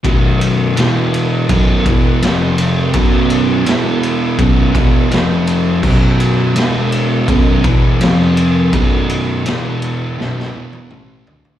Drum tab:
CC |----------------|----------------|x---------------|----------------|
RD |x-x-x-x-x-x-x-x-|x-x-x-x-x-x-x-x-|--x-x-x-x-x-x-x-|x-x-x-x---------|
SD |----o-------o---|----o-------o---|----o-------o---|----o---oo------|
T1 |----------------|----------------|----------------|-----------o----|
T2 |----------------|----------------|----------------|------------o---|
FT |----------------|----------------|----------------|--------------oo|
BD |o-------o-o-----|o-------o-o-----|o-------o-o-----|o---------------|